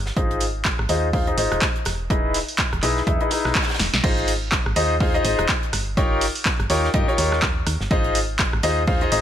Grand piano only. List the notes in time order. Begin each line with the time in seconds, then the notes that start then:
0.17 D#4 F4 G#4 C5 D#5
0.89 D#4 F4 G#4 C5 D#5
1.13 D#4 F4 G#4 C5 F5
1.27 D#4 F4 G#4 C5 D#5
1.38 D#4 F4 G#4 C5 D#5
2.10 D#4 E4 G#4 B4 D#5
2.83 D#4 E4 G#4 B4 D#5
3.07 D#4 E4 G#4 B4 E5
3.21 D#4 E4 G#4 B4 D#5
3.31 D#4 E4 G#4 B4 D#5
4.04 D#4 F4 G#4 C5 D#5
4.76 D#4 F4 G#4 C5 D#5
5.00 D#4 F4 G#4 C5 F5
5.14 D#4 F4 G#4 C5 D#5
5.24 D#4 F4 G#4 C5 D#5
5.97 D#4 F4 G4 A#4 C#5
6.70 D#4 F4 G4 A#4 C#5
6.94 D#4 F4 G4 A#4 D#5
7.08 D#4 F4 G4 A#4 C#5
7.18 D#4 F4 G4 A#4 C#5
7.91 D#4 F4 G#4 C5 D#5
8.63 D#4 F4 G#4 C5 D#5
8.88 D#4 F4 G#4 C5 F5
9.02 D#4 F4 G#4 C5 D#5
9.12 D#4 F4 G#4 C5 D#5